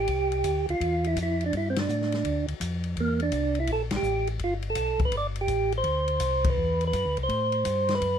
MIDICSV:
0, 0, Header, 1, 4, 480
1, 0, Start_track
1, 0, Tempo, 360360
1, 125, Time_signature, 4, 2, 24, 8
1, 10906, End_track
2, 0, Start_track
2, 0, Title_t, "Tonewheel organ"
2, 0, Program_c, 0, 16
2, 0, Note_on_c, 0, 67, 94
2, 881, Note_off_c, 0, 67, 0
2, 935, Note_on_c, 0, 65, 79
2, 1420, Note_off_c, 0, 65, 0
2, 1428, Note_on_c, 0, 64, 75
2, 1583, Note_off_c, 0, 64, 0
2, 1634, Note_on_c, 0, 64, 72
2, 1921, Note_off_c, 0, 64, 0
2, 1940, Note_on_c, 0, 62, 69
2, 2065, Note_off_c, 0, 62, 0
2, 2091, Note_on_c, 0, 64, 83
2, 2247, Note_off_c, 0, 64, 0
2, 2265, Note_on_c, 0, 60, 53
2, 2373, Note_off_c, 0, 60, 0
2, 2389, Note_on_c, 0, 62, 69
2, 3279, Note_off_c, 0, 62, 0
2, 4000, Note_on_c, 0, 58, 79
2, 4275, Note_off_c, 0, 58, 0
2, 4295, Note_on_c, 0, 62, 89
2, 4780, Note_off_c, 0, 62, 0
2, 4793, Note_on_c, 0, 64, 80
2, 4945, Note_off_c, 0, 64, 0
2, 4962, Note_on_c, 0, 69, 89
2, 5094, Note_off_c, 0, 69, 0
2, 5278, Note_on_c, 0, 67, 88
2, 5705, Note_off_c, 0, 67, 0
2, 5912, Note_on_c, 0, 65, 84
2, 6046, Note_off_c, 0, 65, 0
2, 6259, Note_on_c, 0, 69, 88
2, 6676, Note_off_c, 0, 69, 0
2, 6729, Note_on_c, 0, 71, 87
2, 6872, Note_off_c, 0, 71, 0
2, 6891, Note_on_c, 0, 74, 97
2, 7021, Note_off_c, 0, 74, 0
2, 7206, Note_on_c, 0, 67, 85
2, 7629, Note_off_c, 0, 67, 0
2, 7694, Note_on_c, 0, 72, 89
2, 8653, Note_off_c, 0, 72, 0
2, 8654, Note_on_c, 0, 71, 86
2, 9119, Note_off_c, 0, 71, 0
2, 9155, Note_on_c, 0, 71, 93
2, 9565, Note_off_c, 0, 71, 0
2, 9634, Note_on_c, 0, 72, 89
2, 10583, Note_off_c, 0, 72, 0
2, 10589, Note_on_c, 0, 71, 99
2, 10906, Note_off_c, 0, 71, 0
2, 10906, End_track
3, 0, Start_track
3, 0, Title_t, "Tonewheel organ"
3, 0, Program_c, 1, 16
3, 103, Note_on_c, 1, 36, 62
3, 579, Note_off_c, 1, 36, 0
3, 589, Note_on_c, 1, 38, 78
3, 888, Note_off_c, 1, 38, 0
3, 912, Note_on_c, 1, 38, 35
3, 997, Note_off_c, 1, 38, 0
3, 1071, Note_on_c, 1, 40, 70
3, 1543, Note_off_c, 1, 40, 0
3, 1548, Note_on_c, 1, 41, 85
3, 2021, Note_off_c, 1, 41, 0
3, 2032, Note_on_c, 1, 43, 70
3, 2503, Note_off_c, 1, 43, 0
3, 2512, Note_on_c, 1, 45, 83
3, 2983, Note_off_c, 1, 45, 0
3, 2987, Note_on_c, 1, 38, 74
3, 3282, Note_off_c, 1, 38, 0
3, 3298, Note_on_c, 1, 38, 36
3, 3385, Note_off_c, 1, 38, 0
3, 3467, Note_on_c, 1, 41, 82
3, 3940, Note_off_c, 1, 41, 0
3, 3941, Note_on_c, 1, 40, 67
3, 4417, Note_off_c, 1, 40, 0
3, 4423, Note_on_c, 1, 36, 81
3, 4898, Note_off_c, 1, 36, 0
3, 4899, Note_on_c, 1, 34, 78
3, 5202, Note_off_c, 1, 34, 0
3, 5219, Note_on_c, 1, 34, 37
3, 5306, Note_off_c, 1, 34, 0
3, 5367, Note_on_c, 1, 33, 91
3, 5849, Note_off_c, 1, 33, 0
3, 5850, Note_on_c, 1, 31, 74
3, 6331, Note_off_c, 1, 31, 0
3, 6331, Note_on_c, 1, 35, 74
3, 6634, Note_off_c, 1, 35, 0
3, 6650, Note_on_c, 1, 35, 35
3, 6739, Note_off_c, 1, 35, 0
3, 6814, Note_on_c, 1, 31, 75
3, 7293, Note_off_c, 1, 31, 0
3, 7299, Note_on_c, 1, 33, 87
3, 7775, Note_off_c, 1, 33, 0
3, 7775, Note_on_c, 1, 38, 70
3, 8254, Note_off_c, 1, 38, 0
3, 8263, Note_on_c, 1, 36, 75
3, 8738, Note_off_c, 1, 36, 0
3, 8758, Note_on_c, 1, 40, 80
3, 9226, Note_off_c, 1, 40, 0
3, 9237, Note_on_c, 1, 42, 89
3, 9395, Note_off_c, 1, 42, 0
3, 9401, Note_on_c, 1, 38, 49
3, 9561, Note_on_c, 1, 36, 62
3, 9562, Note_off_c, 1, 38, 0
3, 9706, Note_on_c, 1, 45, 74
3, 9710, Note_off_c, 1, 36, 0
3, 10179, Note_off_c, 1, 45, 0
3, 10190, Note_on_c, 1, 43, 83
3, 10662, Note_off_c, 1, 43, 0
3, 10671, Note_on_c, 1, 42, 74
3, 10906, Note_off_c, 1, 42, 0
3, 10906, End_track
4, 0, Start_track
4, 0, Title_t, "Drums"
4, 101, Note_on_c, 9, 51, 51
4, 110, Note_on_c, 9, 36, 22
4, 234, Note_off_c, 9, 51, 0
4, 243, Note_off_c, 9, 36, 0
4, 422, Note_on_c, 9, 51, 39
4, 555, Note_off_c, 9, 51, 0
4, 586, Note_on_c, 9, 44, 50
4, 586, Note_on_c, 9, 51, 55
4, 592, Note_on_c, 9, 36, 19
4, 719, Note_off_c, 9, 44, 0
4, 719, Note_off_c, 9, 51, 0
4, 725, Note_off_c, 9, 36, 0
4, 915, Note_on_c, 9, 51, 38
4, 1048, Note_off_c, 9, 51, 0
4, 1078, Note_on_c, 9, 36, 20
4, 1082, Note_on_c, 9, 51, 51
4, 1211, Note_off_c, 9, 36, 0
4, 1215, Note_off_c, 9, 51, 0
4, 1390, Note_on_c, 9, 51, 38
4, 1524, Note_off_c, 9, 51, 0
4, 1552, Note_on_c, 9, 44, 58
4, 1552, Note_on_c, 9, 51, 57
4, 1555, Note_on_c, 9, 36, 16
4, 1685, Note_off_c, 9, 44, 0
4, 1685, Note_off_c, 9, 51, 0
4, 1688, Note_off_c, 9, 36, 0
4, 1874, Note_on_c, 9, 51, 36
4, 2007, Note_off_c, 9, 51, 0
4, 2036, Note_on_c, 9, 36, 16
4, 2036, Note_on_c, 9, 51, 49
4, 2169, Note_off_c, 9, 36, 0
4, 2170, Note_off_c, 9, 51, 0
4, 2349, Note_on_c, 9, 51, 62
4, 2353, Note_on_c, 9, 38, 66
4, 2482, Note_off_c, 9, 51, 0
4, 2486, Note_off_c, 9, 38, 0
4, 2515, Note_on_c, 9, 44, 56
4, 2648, Note_off_c, 9, 44, 0
4, 2682, Note_on_c, 9, 38, 25
4, 2815, Note_off_c, 9, 38, 0
4, 2826, Note_on_c, 9, 51, 39
4, 2842, Note_on_c, 9, 38, 36
4, 2959, Note_off_c, 9, 51, 0
4, 2975, Note_off_c, 9, 38, 0
4, 2993, Note_on_c, 9, 51, 53
4, 2994, Note_on_c, 9, 36, 20
4, 3126, Note_off_c, 9, 51, 0
4, 3127, Note_off_c, 9, 36, 0
4, 3308, Note_on_c, 9, 51, 42
4, 3441, Note_off_c, 9, 51, 0
4, 3472, Note_on_c, 9, 36, 17
4, 3474, Note_on_c, 9, 44, 48
4, 3474, Note_on_c, 9, 51, 62
4, 3605, Note_off_c, 9, 36, 0
4, 3607, Note_off_c, 9, 44, 0
4, 3607, Note_off_c, 9, 51, 0
4, 3778, Note_on_c, 9, 51, 36
4, 3911, Note_off_c, 9, 51, 0
4, 3950, Note_on_c, 9, 36, 18
4, 3952, Note_on_c, 9, 51, 45
4, 4083, Note_off_c, 9, 36, 0
4, 4085, Note_off_c, 9, 51, 0
4, 4258, Note_on_c, 9, 51, 40
4, 4391, Note_off_c, 9, 51, 0
4, 4418, Note_on_c, 9, 44, 45
4, 4418, Note_on_c, 9, 51, 59
4, 4426, Note_on_c, 9, 36, 21
4, 4551, Note_off_c, 9, 44, 0
4, 4551, Note_off_c, 9, 51, 0
4, 4559, Note_off_c, 9, 36, 0
4, 4727, Note_on_c, 9, 51, 38
4, 4860, Note_off_c, 9, 51, 0
4, 4892, Note_on_c, 9, 51, 53
4, 4902, Note_on_c, 9, 36, 17
4, 5026, Note_off_c, 9, 51, 0
4, 5035, Note_off_c, 9, 36, 0
4, 5203, Note_on_c, 9, 51, 61
4, 5207, Note_on_c, 9, 38, 70
4, 5336, Note_off_c, 9, 51, 0
4, 5340, Note_off_c, 9, 38, 0
4, 5373, Note_on_c, 9, 44, 56
4, 5507, Note_off_c, 9, 44, 0
4, 5692, Note_on_c, 9, 51, 39
4, 5825, Note_off_c, 9, 51, 0
4, 5853, Note_on_c, 9, 51, 46
4, 5861, Note_on_c, 9, 36, 19
4, 5986, Note_off_c, 9, 51, 0
4, 5994, Note_off_c, 9, 36, 0
4, 6159, Note_on_c, 9, 51, 39
4, 6292, Note_off_c, 9, 51, 0
4, 6330, Note_on_c, 9, 44, 60
4, 6330, Note_on_c, 9, 51, 63
4, 6339, Note_on_c, 9, 36, 16
4, 6463, Note_off_c, 9, 44, 0
4, 6463, Note_off_c, 9, 51, 0
4, 6472, Note_off_c, 9, 36, 0
4, 6652, Note_on_c, 9, 51, 41
4, 6656, Note_on_c, 9, 36, 57
4, 6785, Note_off_c, 9, 51, 0
4, 6790, Note_off_c, 9, 36, 0
4, 6816, Note_on_c, 9, 51, 52
4, 6822, Note_on_c, 9, 36, 21
4, 6949, Note_off_c, 9, 51, 0
4, 6955, Note_off_c, 9, 36, 0
4, 7134, Note_on_c, 9, 51, 40
4, 7267, Note_off_c, 9, 51, 0
4, 7300, Note_on_c, 9, 44, 47
4, 7300, Note_on_c, 9, 51, 54
4, 7307, Note_on_c, 9, 36, 21
4, 7433, Note_off_c, 9, 44, 0
4, 7433, Note_off_c, 9, 51, 0
4, 7440, Note_off_c, 9, 36, 0
4, 7623, Note_on_c, 9, 51, 37
4, 7756, Note_off_c, 9, 51, 0
4, 7776, Note_on_c, 9, 51, 43
4, 7786, Note_on_c, 9, 36, 19
4, 7909, Note_off_c, 9, 51, 0
4, 7920, Note_off_c, 9, 36, 0
4, 8093, Note_on_c, 9, 51, 41
4, 8227, Note_off_c, 9, 51, 0
4, 8254, Note_on_c, 9, 44, 52
4, 8254, Note_on_c, 9, 51, 67
4, 8267, Note_on_c, 9, 36, 21
4, 8387, Note_off_c, 9, 44, 0
4, 8387, Note_off_c, 9, 51, 0
4, 8400, Note_off_c, 9, 36, 0
4, 8583, Note_on_c, 9, 51, 70
4, 8586, Note_on_c, 9, 36, 74
4, 8716, Note_off_c, 9, 51, 0
4, 8719, Note_off_c, 9, 36, 0
4, 9068, Note_on_c, 9, 51, 39
4, 9201, Note_off_c, 9, 51, 0
4, 9233, Note_on_c, 9, 44, 45
4, 9233, Note_on_c, 9, 51, 54
4, 9237, Note_on_c, 9, 36, 23
4, 9367, Note_off_c, 9, 44, 0
4, 9367, Note_off_c, 9, 51, 0
4, 9370, Note_off_c, 9, 36, 0
4, 9548, Note_on_c, 9, 51, 35
4, 9681, Note_off_c, 9, 51, 0
4, 9715, Note_on_c, 9, 36, 20
4, 9715, Note_on_c, 9, 51, 45
4, 9848, Note_off_c, 9, 36, 0
4, 9849, Note_off_c, 9, 51, 0
4, 10018, Note_on_c, 9, 51, 38
4, 10151, Note_off_c, 9, 51, 0
4, 10189, Note_on_c, 9, 44, 59
4, 10189, Note_on_c, 9, 51, 62
4, 10195, Note_on_c, 9, 36, 17
4, 10322, Note_off_c, 9, 44, 0
4, 10322, Note_off_c, 9, 51, 0
4, 10329, Note_off_c, 9, 36, 0
4, 10503, Note_on_c, 9, 51, 41
4, 10507, Note_on_c, 9, 38, 49
4, 10637, Note_off_c, 9, 51, 0
4, 10641, Note_off_c, 9, 38, 0
4, 10676, Note_on_c, 9, 36, 17
4, 10677, Note_on_c, 9, 51, 54
4, 10809, Note_off_c, 9, 36, 0
4, 10810, Note_off_c, 9, 51, 0
4, 10906, End_track
0, 0, End_of_file